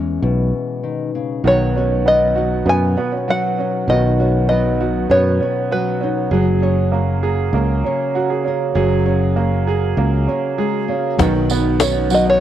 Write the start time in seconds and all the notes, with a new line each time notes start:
Already playing: E2 E3 G#3 C#4 E4 G#4
0.22 B1 B2
0.83 D#3
1.15 C#3
1.44 B1 B2 D#3 F#3 D#4 F#4 C#5
1.48 B4
1.76 C#4 F#4
2.06 F#3 B3 D#5
2.36 D#4 F#4
2.66 F#2 B2 B3 G#5
2.97 B3 F#4
3.12 C#4
3.28 F#3 F#4 F#5
3.59 C#4 D#4
3.88 B1 B2 D#3 F#4 B4 D#5
4.20 C#4 F#4
4.49 F#3 B3 D#5
4.81 D#4 F#4
5.10 F#2 B2 B3 C#5
5.41 C#4 F#4
5.71 F#3 F#4 B4
6.01 C#4 D#4
6.31 F#1 F#3 G#4 C#5
6.62 C#4 C#5
6.92 A#3 F#4
7.23 G#4 A#4
7.53 C#2 C#3 A#3
7.84 C#4 C#5
8.15 F#4
8.30 G#4
8.45 C#4 A#4
8.75 F#1 F#3 G#4 C#5
9.06 C#4 C#5
9.36 A#3 F#4
9.67 G#4 A#4
9.97 C#2 C#3 A#3
10.28 C#4 C#5
10.58 G#3 G#4
10.88 A#3 C#4
11.18 B1 B2 D#3 F#3 D#4 F#4 C#5, cajon bass, cajon slap, tambourine
11.35 cajon slap
11.50 B3, cajon slap, tambourine
11.80 C#4 C#5, cajon slap, tambourine
12.10 F#3 F#4, cajon slap, tambourine
12.15 D#5
12.26 C#5, cajon slap